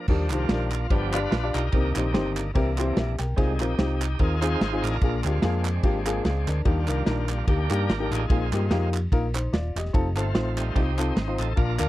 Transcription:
0.08 D#2 D#3 F3 G3 D4 D#4 G4 A#4, kick, crash
0.30 C2 A#3 D4 D#4 F4 G4 C5, clap, ride bell
0.49 A#1 D4 D#4 G4 A#4, snare, ride bell
0.71 clap, ride bell
0.90 G1 G2 F3 B3 D4 F4 G4 B4, kick, ride bell
1.13 D4 F4 G4 B4 D5, clap, ride bell
1.31 A#1, snare, ride bell
1.43 D4 F4 G4 D5
1.54 B1 D#4 G4 A#4, clap, ride bell
1.72 C2 C3 D#3 A#3 C4 D4 D#4 G4 A#4, kick, ride bell
1.95 A#1 C4 D#4 G4 C5, clap, ride bell
2.14 C4 D#4 G4 C5, snare, ride bell
2.36 clap, ride bell
2.54 C2 C3 E3 A#3 C4 D4 E4 G4 A#4, kick, ride bell
2.78 C4 E4 G4 C5, clap, ride bell
2.97 A#1 G4 E5, snare, ride bell
3.19 B1 A#4 G5, snare, clap, ride bell
3.36 C2 C3 G3 G#3 C4 D#4 F4 G#4, kick, ride bell
3.60 A#1 C4 D#4 F4 G4 A#4, clap, ride bell
3.78 C2 C4 D#4 F4 G4, snare, ride bell
4.01 clap, ride bell
4.19 D#2 C4 D#4 F4 G#4 A#4, kick, ride bell
4.41 C4 D#4 F4 G#4 C5, clap, ride bell
4.60 G#1, snare, ride bell
4.73 C4 D#4 F4 G#4
4.83 A1 D4 F4 A#4, snare, clap, ride bell
4.92 snare
5.01 A#1 A#2 A#3 D4 F4 G#4, kick, ride bell
5.24 D2 G#3 A#3 C4 D4 F4 G4, clap, ride bell
5.42 F2 A#3 D4 F4 G#4, snare, ride bell
5.65 clap, ride bell
5.83 G#1 A#3 D4 F4 G4, kick, ride bell
6.05 A#3 D4 F4 G#4, clap, ride bell
6.24 C#2 G#4 F5, snare, ride bell
6.47 D2 D4 A#4, snare, clap, ride bell
6.65 D#2 D#3 G3 A#3 D4 D#4 F4 G4, kick, ride bell
6.88 C2 A#3 D4 D#4 F4 A#4, clap, ride bell
7.06 A#1 A#3 D4 D#4 A#4, snare, ride bell
7.29 G3 D4 F4, clap, ride bell
7.47 D2 A#3 D4 D#4 G4, kick, ride bell
7.70 G2 A#3 D4 D#4 G4 A#4, clap, ride bell
7.89 G#1, snare, ride bell
8.00 A#3 D4 D#4 G4 A#4
8.11 A1 D#4 F4 G#4, clap, ride bell
8.29 A#1 A#2 G#3 A#3 C4 D#4 F4 G#4, kick, ride bell
8.52 G2 A#3 D#4 F4 G4, clap, ride bell
8.71 F2 A#3 D#4 F4 G4, snare, ride bell
8.93 clap, ride bell
9.12 A#1 A#3 D#4 F4 A#4, kick, ride bell
9.34 D#4 C5, clap, ride bell
9.53 D#1 F4 D5, snare, ride bell
9.75 E1 G4 D#5, clap, ride bell
9.85 snare
9.93 F1 C4 D#4 F4 A4, kick, ride bell
10.16 G1 A3 C4 D#4 F4 A4, clap, ride bell
10.34 A1 C4 D#4 F4 C5, snare, ride bell
10.57 G3 A3 D#4, clap, ride bell
10.75 C2 C4 D#4 F4 G4 C5, kick, ride bell
10.98 C4 D#4 F4 A4, clap, ride bell
11.16 G#1, snare, ride bell
11.27 C4 D#4 F4 C5
11.39 A1 A4, clap, ride bell
11.56 A#1 A#2 A#3 D4 F4 A#4, kick, ride bell
11.78 D2 A#3 D4 F4 A#4, clap, ride bell

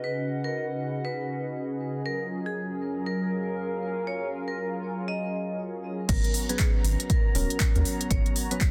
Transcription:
Already playing: C#3 C#4 D#4 F#4 G#4 B4 D#5 F#5
0.04 B4
0.44 A#4
1.05 B4
2.05 F#3 C#4 F4 A#4
2.46 G#4
2.52 A#4
2.85 F5
3.06 A#4
3.24 G#5
4.07 C#5
4.48 A#4
5.08 D#5
6.09 G#1 F#3 B3 C#4 F#4 A#4 A#5, kick, closed hi-hat, crash
6.24 closed hi-hat
6.30 B3
6.34 open hi-hat
6.49 F#3 B3 C#4 G#4 B4, closed hi-hat
6.59 C#5, kick, clap, closed hi-hat
6.76 A#5
6.84 G#1, open hi-hat
7.00 closed hi-hat
7.10 A#4, kick, closed hi-hat
7.35 D#1 F#3 B3 C#4 A#4, open hi-hat
7.50 closed hi-hat
7.60 kick, clap, closed hi-hat
7.75 D#2 F#3 B3 C#4 A#4, closed hi-hat
7.85 open hi-hat
8.01 closed hi-hat
8.10 G#1 F#3 B3 C#4 A#4 C#5, kick, closed hi-hat
8.26 closed hi-hat
8.36 open hi-hat
8.51 F#3 B3 C#4 B4, closed hi-hat
8.61 kick, clap, closed hi-hat

